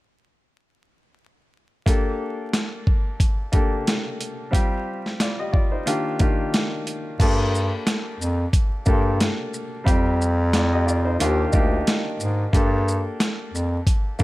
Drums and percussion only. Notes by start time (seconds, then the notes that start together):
1.86 kick, closed hi-hat
2.53 snare, closed hi-hat
2.87 kick
3.20 kick, closed hi-hat
3.53 kick, closed hi-hat
3.87 snare, closed hi-hat
4.20 closed hi-hat
4.53 kick, closed hi-hat
5.06 snare
5.20 snare, closed hi-hat
5.54 kick
5.87 closed hi-hat
6.19 kick, closed hi-hat
6.54 snare, closed hi-hat
6.87 closed hi-hat
7.20 kick, closed hi-hat, crash
7.55 shaker
7.87 snare, closed hi-hat
8.22 shaker
8.53 kick, closed hi-hat
8.86 kick, shaker
9.20 snare, closed hi-hat
9.54 shaker
9.87 kick, closed hi-hat
10.22 shaker
10.53 snare, closed hi-hat
10.88 shaker
11.20 closed hi-hat
11.53 kick, shaker
11.87 snare, closed hi-hat
12.20 shaker
12.53 kick, closed hi-hat
12.88 shaker
13.20 snare, closed hi-hat
13.55 shaker
13.87 kick, closed hi-hat
14.19 kick, shaker